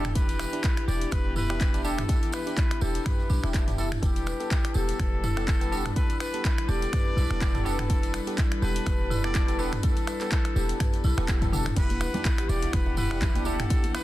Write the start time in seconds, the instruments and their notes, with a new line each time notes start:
Already playing: 808-style bass E1, string section E3 B3 G4 F#5, muted trumpet A4
0.05 finger snap, closed hi-hat, mid tom, tambourine
0.15 tine electric piano D4 E4 G4, string section E4, marimba E4, muted trumpet B4, kick, closed hi-hat, tambourine
0.29 closed hi-hat, tambourine
0.39 marimba B4, finger snap, tambourine
0.52 tine electric piano D4 E4 G4, closed hi-hat, tambourine
0.64 marimba E4, kick, clap, closed hi-hat, tambourine
0.77 finger snap, closed hi-hat
0.88 808-style bass E1, tine electric piano D4 E4 G4, marimba G4, muted trumpet D5, tambourine
1.01 closed hi-hat, tambourine
1.11 808-style bass E1, marimba B4, muted trumpet B4, finger snap, kick, closed hi-hat, tambourine
1.36 marimba E4, muted trumpet B4, mid tom, tambourine
1.49 tine electric piano D4 E4 G4, finger snap, tambourine
1.60 marimba E4, kick, clap, closed hi-hat, tambourine
1.74 tine electric piano D4 E4 G4, closed hi-hat, tambourine
1.84 tine electric piano D4 E4 G4, marimba D4, muted trumpet A4, tambourine
1.98 finger snap, closed hi-hat, mid tom, tambourine
2.09 tine electric piano D4 E4 G4, marimba E4, kick, closed hi-hat, tambourine
2.22 closed hi-hat, tambourine
2.32 muted trumpet B4, marimba B4, finger snap, tambourine
2.46 tine electric piano D4 E4 G4, closed hi-hat, tambourine
2.57 marimba E4, kick, clap, closed hi-hat, tambourine
2.71 finger snap, closed hi-hat
2.81 808-style bass E1, tine electric piano D4 E4 G4, marimba G4, muted trumpet A4, tambourine
2.95 closed hi-hat, tambourine
3.05 muted trumpet B4, finger snap, kick, closed hi-hat, mid tom, tambourine
3.20 tambourine
3.29 808-style bass B1, marimba D4, tambourine
3.43 808-style bass E1, tine electric piano D4 E4 G4, marimba E4, finger snap, tambourine
3.54 marimba E5, kick, clap, closed hi-hat, tambourine
3.67 tine electric piano D4 E4 G4, closed hi-hat, mid tom, tambourine
3.78 tine electric piano D4 E4 G4, marimba E4, muted trumpet A4, tambourine
3.92 finger snap, closed hi-hat, mid tom, tambourine
4.02 808-style bass E1, string section G3 D4 A4 B4, tine electric piano B3 G4 A4, marimba E4, muted trumpet G4, kick, closed hi-hat, tambourine
4.16 closed hi-hat, tambourine
4.26 marimba B4, finger snap, tambourine
4.40 tine electric piano B3 G4 A4, closed hi-hat, tambourine
4.50 marimba E4, kick, clap, closed hi-hat, tambourine
4.65 finger snap, closed hi-hat
4.74 808-style bass E1, tine electric piano B3 G4 A4, marimba G4, muted trumpet A4, tambourine
4.89 closed hi-hat, tambourine
4.99 808-style bass E1, marimba B4, finger snap, kick, closed hi-hat
5.24 marimba E4, mid tom, tambourine
5.37 tine electric piano B3 G4 A4, finger snap, tambourine
5.48 marimba E4, kick, clap, closed hi-hat, tambourine
5.61 tine electric piano B3 G4 A4, closed hi-hat, tambourine
5.72 tine electric piano B3 G4 A4, marimba D4, tambourine
5.86 finger snap, closed hi-hat, mid tom
5.96 tine electric piano B3 G4 A4, marimba E4, muted trumpet B4, kick, closed hi-hat, tambourine
6.10 closed hi-hat, tambourine
6.20 marimba B4, muted trumpet B4, finger snap, tambourine
6.33 tine electric piano B3 G4 A4, closed hi-hat, tambourine
6.44 marimba E4, kick, clap, closed hi-hat, tambourine
6.58 finger snap, closed hi-hat
6.68 808-style bass E1, tine electric piano B3 G4 A4, marimba G4, muted trumpet D5, tambourine
6.82 closed hi-hat, tambourine
6.93 marimba B4, finger snap, kick, closed hi-hat, mid tom, tambourine
7.17 808-style bass B1, marimba E4, tambourine
7.30 808-style bass E1, tine electric piano B3 G4 A4, finger snap
7.41 marimba E4, kick, clap, closed hi-hat, tambourine
7.54 tine electric piano B3 G4 A4, closed hi-hat, mid tom, tambourine
7.65 tine electric piano B3 G4 A4, marimba D4, muted trumpet A4, tambourine
7.79 finger snap, closed hi-hat, mid tom
7.89 tine electric piano B3 G4 A4, marimba E4, kick, closed hi-hat, tambourine
8.03 closed hi-hat, tambourine
8.14 marimba B4, finger snap, tambourine
8.27 tine electric piano B3 G4 A4, closed hi-hat, tambourine
8.38 marimba E4, kick, clap, closed hi-hat, tambourine
8.52 finger snap, closed hi-hat
8.62 808-style bass E1, tine electric piano B3 G4 A4, marimba G4, muted trumpet B4, tambourine
8.76 closed hi-hat, tambourine
8.86 808-style bass E1, marimba B4, finger snap, kick, closed hi-hat, tambourine
9.11 marimba E4, mid tom, tambourine
9.24 tine electric piano B3 G4 A4, muted trumpet D5, finger snap, tambourine
9.35 marimba E4, kick, clap, closed hi-hat, tambourine
9.48 tine electric piano B3 G4 A4, closed hi-hat, tambourine
9.59 tine electric piano B3 G4 A4, marimba D4, muted trumpet B4, tambourine
9.73 finger snap, closed hi-hat, mid tom
9.83 tine electric piano B3 G4 A4, marimba E4, muted trumpet A4, kick, closed hi-hat, tambourine
9.97 closed hi-hat, tambourine
10.07 marimba B4, finger snap, tambourine
10.21 tine electric piano B3 G4 A4, clap, closed hi-hat, tambourine
10.32 marimba E4, kick, clap, closed hi-hat, tambourine
10.45 finger snap, closed hi-hat
10.56 808-style bass E1, tine electric piano B3 G4 A4, marimba G4, tambourine
10.69 closed hi-hat, tambourine
10.80 marimba B4, finger snap, kick, closed hi-hat, mid tom, tambourine
10.92 closed hi-hat, tambourine
11.04 808-style bass B1, marimba E4, tambourine
11.17 808-style bass E1, tine electric piano B3 G4 A4, finger snap, tambourine
11.28 marimba E4, kick, clap, closed hi-hat, tambourine
11.42 tine electric piano B3 G4 A4, kick, closed hi-hat, mid tom, high tom, tambourine
11.52 tine electric piano B3 G4 A4, marimba D4, muted trumpet A4, mid tom, tambourine
11.66 finger snap, closed hi-hat, mid tom
11.76 808-style bass E1, string section E3 B3 G4 F#5, tine electric piano D4 E4 G4, marimba E4, muted trumpet B4, kick, closed hi-hat, tambourine, crash
11.90 closed hi-hat, tambourine, high conga
12.01 marimba B4, finger snap, tambourine, djembe tone
12.14 tine electric piano D4 E4 G4, closed hi-hat, tambourine, high conga, low conga
12.25 marimba E4, kick, clap, closed hi-hat, tambourine, djembe tone
12.38 marimba G4, finger snap, closed hi-hat
12.49 808-style bass E1, tine electric piano D4 E4 G4, muted trumpet D5, tambourine
12.62 closed hi-hat, tambourine, djembe slap, djembe tone
12.73 808-style bass E1, marimba B4, muted trumpet B4, finger snap, kick, closed hi-hat, tambourine
12.86 djembe tone
12.97 marimba E4, muted trumpet B4, mid tom, tambourine
13.11 tine electric piano D4 E4 G4, finger snap
13.21 marimba E4, kick, clap, closed hi-hat, tambourine, djembe tone, djembe bass, low conga
13.35 tine electric piano D4 E4 G4, closed hi-hat, tambourine, high conga
13.45 tine electric piano D4 E4 G4, marimba D4, muted trumpet A4, tambourine, djembe tone
13.60 finger snap, closed hi-hat, mid tom, tambourine
13.70 tine electric piano D4 E4 G4, marimba E4, kick, closed hi-hat, tambourine
13.83 closed hi-hat, tambourine, djembe tone, high conga
13.95 muted trumpet B4, marimba B4, finger snap, tambourine